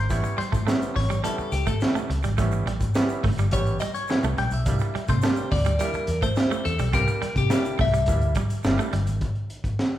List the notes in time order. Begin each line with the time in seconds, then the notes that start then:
Already playing: C5
0.10 A1 G3 B3 C#4 E4 C#5, kick, closed hi-hat, shaker
0.24 muted clean electric guitar stroke, closed hi-hat, shaker
0.38 G3 C5, muted fingered electric bass stroke, closed hi-hat
0.52 A2 A3, kick, closed hi-hat, shaker
0.67 G3 A3 B3 C#4 E4, snare, shaker
0.82 closed hi-hat, shaker
0.96 A1 C#5, muted clean electric guitar stroke, kick, snare, open hi-hat
1.10 G3, closed hi-hat, shaker
1.24 G3 B3 C#4 E4 A4, closed hi-hat, shaker
1.38 muted fingered electric bass stroke, muted clean electric guitar stroke, shaker
1.52 C#2 G4, closed hi-hat, shaker
1.67 A3 A4, kick, closed hi-hat, shaker
1.80 G3 B3 C#4 E4, snare, shaker
1.95 A3, shaker
2.10 C#2, muted clean electric guitar stroke, closed hi-hat
2.23 G#1 G3, closed hi-hat, shaker
2.38 A1 G3 A3 B3 C#4 E4, kick, closed hi-hat, shaker
2.52 muted clean electric guitar stroke, shaker
2.66 A1 G3, closed hi-hat
2.80 kick, closed hi-hat, shaker
2.95 G3 B3 C#4 E4, muted clean electric guitar stroke, snare, shaker
3.09 shaker
3.23 G1 A3, kick, open hi-hat
3.38 G3, closed hi-hat, shaker
3.51 A1 G3 B3 C#4 G4 C#5, kick, closed hi-hat, shaker
3.66 closed hi-hat, shaker
3.80 G3 D#5, closed hi-hat, shaker
3.94 C#5, closed hi-hat, shaker
4.08 G3 B3 C#4 E4, muted clean electric guitar stroke, snare, shaker
4.23 C2 A3, closed hi-hat, shaker
4.38 A#1 G3 G5, closed hi-hat
4.50 B1 E5, closed hi-hat, shaker
4.66 C2 G3 A#3 D4 E4, kick, closed hi-hat, shaker
4.79 muted clean electric guitar stroke, closed hi-hat, shaker
4.95 G3, muted fingered electric bass stroke, closed hi-hat
5.08 C3 A3 C5, kick, closed hi-hat, shaker
5.22 G3 A3 A#3 D4 G4, snare, shaker
5.36 shaker
5.51 D2 D5, muted clean electric guitar stroke, kick, snare, open hi-hat
5.65 G3, closed hi-hat, shaker
5.79 G3 A#3 D4 E4 A#4, closed hi-hat, shaker
5.93 muted fingered electric bass stroke, muted clean electric guitar stroke, closed hi-hat, shaker
6.07 E2, closed hi-hat, shaker
6.22 A3 C5, kick, closed hi-hat, shaker
6.36 G3 A#3 D4 E4, snare, shaker
6.51 A3, shaker
6.65 E2 A4, muted clean electric guitar stroke, closed hi-hat
6.79 B1 G3, closed hi-hat, shaker
6.93 C2 G3 A#3 C4 D4 G4 A#4, kick, closed hi-hat, shaker
7.08 muted clean electric guitar stroke, closed hi-hat, shaker
7.22 G3, muted fingered electric bass stroke, closed hi-hat
7.36 C3 G4, kick, closed hi-hat, shaker
7.50 G3 A#3 D4 E4, muted clean electric guitar stroke, snare, shaker
7.65 closed hi-hat, shaker
7.78 C2 A3 E5, kick, open hi-hat
7.94 G3, closed hi-hat, shaker
8.06 D2 G3 A#3 D4 E4, kick, closed hi-hat, shaker
8.21 closed hi-hat, shaker
8.35 G3, kick, closed hi-hat, shaker
8.50 closed hi-hat, shaker
8.64 G1 G3 A#3 D4 E4, muted clean electric guitar stroke, snare, shaker
8.78 A3, closed hi-hat, shaker
8.93 G1 G3, closed hi-hat
9.07 G#1, closed hi-hat, shaker
9.21 kick, closed hi-hat
9.35 closed hi-hat
9.50 closed hi-hat
9.64 kick, closed hi-hat
9.79 snare